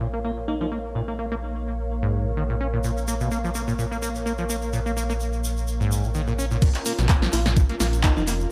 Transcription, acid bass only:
0, 0, Header, 1, 2, 480
1, 0, Start_track
1, 0, Key_signature, -5, "minor"
1, 0, Tempo, 472441
1, 967, Time_signature, 4, 2, 24, 8
1, 8655, End_track
2, 0, Start_track
2, 0, Title_t, "Acid bass"
2, 0, Program_c, 0, 38
2, 7, Note_on_c, 0, 46, 76
2, 78, Note_off_c, 0, 46, 0
2, 137, Note_on_c, 0, 58, 78
2, 198, Note_off_c, 0, 58, 0
2, 248, Note_on_c, 0, 58, 69
2, 319, Note_off_c, 0, 58, 0
2, 488, Note_on_c, 0, 58, 77
2, 559, Note_off_c, 0, 58, 0
2, 618, Note_on_c, 0, 53, 77
2, 678, Note_off_c, 0, 53, 0
2, 728, Note_on_c, 0, 58, 71
2, 799, Note_off_c, 0, 58, 0
2, 967, Note_on_c, 0, 46, 77
2, 1039, Note_off_c, 0, 46, 0
2, 1097, Note_on_c, 0, 58, 68
2, 1158, Note_off_c, 0, 58, 0
2, 1207, Note_on_c, 0, 58, 70
2, 1279, Note_off_c, 0, 58, 0
2, 1338, Note_on_c, 0, 58, 97
2, 1374, Note_off_c, 0, 58, 0
2, 2058, Note_on_c, 0, 44, 96
2, 2297, Note_on_c, 0, 46, 72
2, 2312, Note_off_c, 0, 44, 0
2, 2357, Note_off_c, 0, 46, 0
2, 2407, Note_on_c, 0, 51, 83
2, 2478, Note_off_c, 0, 51, 0
2, 2537, Note_on_c, 0, 46, 74
2, 2597, Note_off_c, 0, 46, 0
2, 2647, Note_on_c, 0, 61, 76
2, 2718, Note_off_c, 0, 61, 0
2, 2777, Note_on_c, 0, 46, 69
2, 2837, Note_off_c, 0, 46, 0
2, 2887, Note_on_c, 0, 46, 81
2, 2958, Note_off_c, 0, 46, 0
2, 3127, Note_on_c, 0, 58, 71
2, 3199, Note_off_c, 0, 58, 0
2, 3257, Note_on_c, 0, 47, 72
2, 3348, Note_off_c, 0, 47, 0
2, 3367, Note_on_c, 0, 58, 79
2, 3438, Note_off_c, 0, 58, 0
2, 3497, Note_on_c, 0, 53, 72
2, 3557, Note_off_c, 0, 53, 0
2, 3607, Note_on_c, 0, 58, 75
2, 3678, Note_off_c, 0, 58, 0
2, 3737, Note_on_c, 0, 46, 79
2, 3797, Note_off_c, 0, 46, 0
2, 3847, Note_on_c, 0, 46, 84
2, 3919, Note_off_c, 0, 46, 0
2, 3977, Note_on_c, 0, 58, 73
2, 4037, Note_off_c, 0, 58, 0
2, 4087, Note_on_c, 0, 58, 73
2, 4158, Note_off_c, 0, 58, 0
2, 4326, Note_on_c, 0, 58, 77
2, 4398, Note_off_c, 0, 58, 0
2, 4457, Note_on_c, 0, 53, 74
2, 4517, Note_off_c, 0, 53, 0
2, 4566, Note_on_c, 0, 58, 73
2, 4638, Note_off_c, 0, 58, 0
2, 4806, Note_on_c, 0, 46, 84
2, 4878, Note_off_c, 0, 46, 0
2, 4937, Note_on_c, 0, 58, 65
2, 4997, Note_off_c, 0, 58, 0
2, 5046, Note_on_c, 0, 58, 70
2, 5118, Note_off_c, 0, 58, 0
2, 5176, Note_on_c, 0, 58, 98
2, 5213, Note_off_c, 0, 58, 0
2, 5896, Note_on_c, 0, 44, 96
2, 6137, Note_on_c, 0, 46, 72
2, 6152, Note_off_c, 0, 44, 0
2, 6197, Note_off_c, 0, 46, 0
2, 6246, Note_on_c, 0, 51, 80
2, 6318, Note_off_c, 0, 51, 0
2, 6377, Note_on_c, 0, 46, 81
2, 6437, Note_off_c, 0, 46, 0
2, 6486, Note_on_c, 0, 61, 72
2, 6558, Note_off_c, 0, 61, 0
2, 6617, Note_on_c, 0, 46, 69
2, 6677, Note_off_c, 0, 46, 0
2, 6727, Note_on_c, 0, 46, 80
2, 6798, Note_off_c, 0, 46, 0
2, 6967, Note_on_c, 0, 58, 75
2, 7039, Note_off_c, 0, 58, 0
2, 7097, Note_on_c, 0, 47, 73
2, 7188, Note_off_c, 0, 47, 0
2, 7208, Note_on_c, 0, 58, 80
2, 7279, Note_off_c, 0, 58, 0
2, 7337, Note_on_c, 0, 53, 75
2, 7397, Note_off_c, 0, 53, 0
2, 7447, Note_on_c, 0, 58, 76
2, 7518, Note_off_c, 0, 58, 0
2, 7577, Note_on_c, 0, 46, 79
2, 7638, Note_off_c, 0, 46, 0
2, 7687, Note_on_c, 0, 46, 83
2, 7759, Note_off_c, 0, 46, 0
2, 7817, Note_on_c, 0, 58, 81
2, 7877, Note_off_c, 0, 58, 0
2, 7927, Note_on_c, 0, 58, 75
2, 7999, Note_off_c, 0, 58, 0
2, 8167, Note_on_c, 0, 58, 83
2, 8239, Note_off_c, 0, 58, 0
2, 8297, Note_on_c, 0, 53, 81
2, 8357, Note_off_c, 0, 53, 0
2, 8407, Note_on_c, 0, 58, 81
2, 8479, Note_off_c, 0, 58, 0
2, 8655, End_track
0, 0, End_of_file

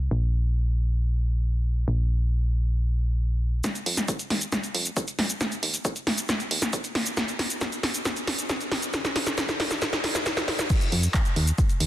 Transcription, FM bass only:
0, 0, Header, 1, 2, 480
1, 0, Start_track
1, 0, Tempo, 441176
1, 123, Time_signature, 4, 2, 24, 8
1, 12909, End_track
2, 0, Start_track
2, 0, Title_t, "FM bass"
2, 0, Program_c, 0, 39
2, 123, Note_on_c, 0, 34, 93
2, 2019, Note_off_c, 0, 34, 0
2, 2043, Note_on_c, 0, 34, 87
2, 3939, Note_off_c, 0, 34, 0
2, 4203, Note_on_c, 0, 41, 94
2, 4375, Note_off_c, 0, 41, 0
2, 4683, Note_on_c, 0, 39, 97
2, 4855, Note_off_c, 0, 39, 0
2, 5163, Note_on_c, 0, 41, 99
2, 5335, Note_off_c, 0, 41, 0
2, 5643, Note_on_c, 0, 41, 90
2, 5815, Note_off_c, 0, 41, 0
2, 6123, Note_on_c, 0, 39, 99
2, 6295, Note_off_c, 0, 39, 0
2, 6603, Note_on_c, 0, 34, 95
2, 6776, Note_off_c, 0, 34, 0
2, 7083, Note_on_c, 0, 39, 104
2, 7255, Note_off_c, 0, 39, 0
2, 7563, Note_on_c, 0, 39, 89
2, 7735, Note_off_c, 0, 39, 0
2, 8043, Note_on_c, 0, 34, 97
2, 8215, Note_off_c, 0, 34, 0
2, 8523, Note_on_c, 0, 32, 103
2, 8695, Note_off_c, 0, 32, 0
2, 9002, Note_on_c, 0, 34, 101
2, 9175, Note_off_c, 0, 34, 0
2, 9482, Note_on_c, 0, 34, 94
2, 9655, Note_off_c, 0, 34, 0
2, 9963, Note_on_c, 0, 41, 98
2, 10135, Note_off_c, 0, 41, 0
2, 10442, Note_on_c, 0, 39, 97
2, 10615, Note_off_c, 0, 39, 0
2, 10923, Note_on_c, 0, 39, 89
2, 11095, Note_off_c, 0, 39, 0
2, 11403, Note_on_c, 0, 41, 94
2, 11575, Note_off_c, 0, 41, 0
2, 11883, Note_on_c, 0, 41, 102
2, 12055, Note_off_c, 0, 41, 0
2, 12363, Note_on_c, 0, 39, 102
2, 12535, Note_off_c, 0, 39, 0
2, 12842, Note_on_c, 0, 39, 91
2, 12909, Note_off_c, 0, 39, 0
2, 12909, End_track
0, 0, End_of_file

